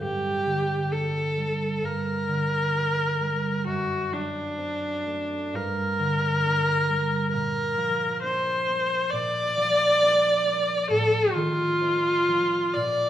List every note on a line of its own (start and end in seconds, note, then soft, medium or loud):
0.00 1.81 G2 soft
0.00 0.94 G4 medium
0.46 2.27 D3 soft
0.90 2.73 D4 soft
0.90 2.73 G4 soft
0.90 1.86 A4 medium
1.37 3.19 G3 soft
1.83 3.71 G2 soft
1.83 3.66 A#4 medium
2.28 3.71 D3 soft
2.74 4.56 D4 soft
2.74 3.71 G4 soft
3.20 3.70 G3 soft
3.66 5.57 F#2 soft
3.66 4.15 F#4 medium
4.12 5.57 F#3 soft
4.12 5.57 D4 medium
4.57 5.57 C4 soft
4.57 6.45 D4 soft
5.06 5.58 A3 soft
5.53 7.37 G2 soft
5.53 7.32 A#4 medium
5.99 7.37 D3 soft
6.45 8.22 A#3 soft
6.45 8.21 D4 soft
6.88 7.37 G3 soft
7.32 9.11 A#2 soft
7.32 8.20 A#4 medium
7.77 9.55 F3 soft
8.23 8.66 A#3 soft
8.23 10.01 D4 soft
8.23 9.12 C5 medium
8.68 10.01 A#3 soft
9.10 10.94 A#2 soft
9.10 10.89 D5 medium
9.56 12.27 F3 soft
10.02 10.45 A#3 soft
10.02 10.94 D4 soft
10.46 10.94 A#3 soft
10.89 12.78 A2 soft
10.89 11.34 A4 medium
11.33 12.79 D#3 soft
11.33 12.75 F4 medium
11.81 12.79 C4 soft
11.81 12.79 D#4 soft
12.28 13.10 F3 soft
12.74 13.10 A#2 soft
12.74 13.10 D5 medium